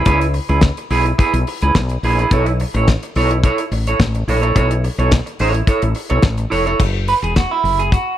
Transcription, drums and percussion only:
0.05 kick loud
0.05 closed hi-hat medium
0.21 closed hi-hat soft
0.34 open hi-hat medium
0.49 closed hi-hat soft
0.61 kick loud
0.61 snare loud
0.61 closed hi-hat medium
0.77 closed hi-hat soft
0.90 open hi-hat medium
1.06 closed hi-hat soft
1.19 kick loud
1.19 closed hi-hat medium
1.34 closed hi-hat medium
1.47 open hi-hat medium
1.62 closed hi-hat medium
1.75 kick loud
1.75 snare loud
1.75 closed hi-hat medium
1.89 closed hi-hat soft
2.03 open hi-hat medium
2.19 closed hi-hat soft
2.31 kick loud
2.31 closed hi-hat medium
2.46 closed hi-hat soft
2.60 open hi-hat medium
2.75 closed hi-hat soft
2.88 kick loud
2.88 snare loud
2.88 closed hi-hat medium
3.03 closed hi-hat soft
3.15 open hi-hat medium
3.31 closed hi-hat soft
3.43 kick loud
3.43 closed hi-hat medium
3.58 closed hi-hat medium
3.72 open hi-hat medium
3.87 closed hi-hat medium
4.00 kick loud
4.00 snare loud
4.00 closed hi-hat medium
4.15 closed hi-hat soft
4.28 open hi-hat medium
4.43 closed hi-hat soft
4.56 kick loud
4.56 closed hi-hat medium
4.71 closed hi-hat medium
4.84 open hi-hat medium
4.99 closed hi-hat soft
5.11 kick loud
5.11 snare loud
5.11 closed hi-hat medium
5.27 closed hi-hat soft
5.39 open hi-hat medium
5.54 closed hi-hat medium
5.67 kick loud
5.67 closed hi-hat medium
5.82 closed hi-hat soft
5.95 open hi-hat medium
6.10 closed hi-hat medium
6.22 kick loud
6.22 snare loud
6.22 closed hi-hat medium
6.38 closed hi-hat soft
6.52 open hi-hat medium
6.67 closed hi-hat soft
6.80 kick loud
6.80 crash medium
7.08 open hi-hat medium
7.24 closed hi-hat soft
7.36 kick loud
7.36 snare loud
7.36 closed hi-hat medium
7.65 open hi-hat medium
7.80 closed hi-hat soft
7.92 kick loud
7.92 closed hi-hat medium

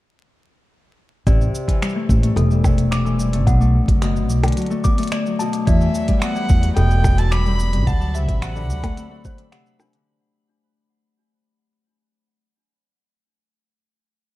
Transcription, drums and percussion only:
1.27 kick loud
1.27 closed hi-hat soft
1.27 cabasa soft
1.41 cabasa soft
1.55 cabasa medium
1.68 kick medium
1.68 closed hi-hat medium
1.68 cabasa soft
1.82 finger snap loud
1.82 closed hi-hat soft
1.82 cabasa soft
1.89 cabasa soft
2.09 kick medium
2.09 cabasa medium
2.23 closed hi-hat soft
2.23 cabasa soft
2.37 closed hi-hat soft
2.37 cabasa soft
2.51 cabasa soft
2.64 kick medium
2.64 cabasa medium
2.64 percussion blips medium
2.78 closed hi-hat soft
2.78 cabasa soft
2.92 finger snap loud
2.92 closed hi-hat soft
2.92 cabasa soft
3.06 cabasa soft
3.20 cabasa medium
3.33 closed hi-hat medium
3.33 cabasa soft
3.47 kick loud
3.47 closed hi-hat soft
3.47 cabasa soft
3.61 cabasa soft
3.88 kick loud
3.88 closed hi-hat medium
3.88 cabasa soft
4.02 finger snap loud
4.02 closed hi-hat soft
4.02 cabasa soft
4.16 cabasa soft
4.30 cabasa medium
4.44 closed hi-hat soft
4.44 cabasa soft
4.44 percussion blips medium
4.48 closed hi-hat soft
4.52 closed hi-hat soft
4.57 closed hi-hat soft
4.57 cabasa soft
4.62 closed hi-hat soft
4.66 closed hi-hat soft
4.71 cabasa soft
4.84 kick medium
4.84 cabasa medium
4.98 closed hi-hat soft
4.98 cabasa soft
5.01 closed hi-hat soft
5.01 cabasa soft
5.03 cabasa soft
5.05 closed hi-hat soft
5.05 cabasa soft
5.08 cabasa soft
5.10 finger snap medium
5.10 closed hi-hat soft
5.10 cabasa soft
5.12 cabasa soft
5.26 cabasa soft
5.40 cabasa medium
5.53 closed hi-hat medium
5.53 cabasa soft
5.67 kick loud
5.67 closed hi-hat soft
5.67 cabasa soft
5.81 cabasa soft
5.95 cabasa medium
6.08 kick medium
6.08 closed hi-hat medium
6.08 cabasa soft
6.22 finger snap loud
6.22 closed hi-hat soft
6.22 cabasa medium
6.36 cabasa soft
6.49 kick loud
6.49 cabasa medium
6.63 closed hi-hat medium
6.63 cabasa soft
6.77 closed hi-hat soft
6.77 cabasa soft
6.91 cabasa soft
7.04 kick loud
7.04 cabasa medium
7.04 percussion blips medium
7.18 closed hi-hat soft
7.18 cabasa soft
7.32 finger snap medium
7.32 closed hi-hat soft
7.32 cabasa soft
7.46 cabasa soft
7.59 cabasa medium
7.73 closed hi-hat medium
7.73 cabasa soft
7.87 kick loud
7.87 closed hi-hat soft
7.87 cabasa soft
8.01 cabasa soft
8.15 cabasa medium
8.29 kick loud
8.29 closed hi-hat soft
8.29 cabasa soft
8.42 finger snap loud
8.42 closed hi-hat soft
8.42 cabasa soft
8.56 cabasa soft
8.70 cabasa medium
8.83 kick medium
8.83 closed hi-hat medium
8.83 cabasa soft
8.83 percussion blips medium
8.97 closed hi-hat soft
8.97 cabasa soft
9.25 kick loud
9.25 cabasa medium
9.38 closed hi-hat soft
9.38 cabasa soft
9.52 finger snap loud
9.52 closed hi-hat soft
9.52 cabasa soft
9.66 cabasa soft
9.80 cabasa medium
9.80 percussion blips medium
9.93 closed hi-hat medium
9.93 cabasa soft

